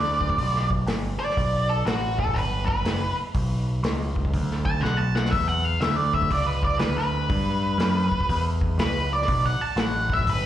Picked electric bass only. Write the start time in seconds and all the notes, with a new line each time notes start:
Already playing: D2
0.38 B1
0.86 G1
1.37 B1
1.85 A1
2.36 G1
2.85 F#1
3.16 muted picked electric bass stroke
3.35 B1
3.83 C#2
4.34 D2
4.82 B1
5.33 E2
5.81 D2
6.31 C#2
6.80 D2
7.30 G2
7.78 F#2
8.29 E2
8.78 C#2
9.28 B1
9.57 muted picked electric bass stroke
9.76 A1
10.28 G1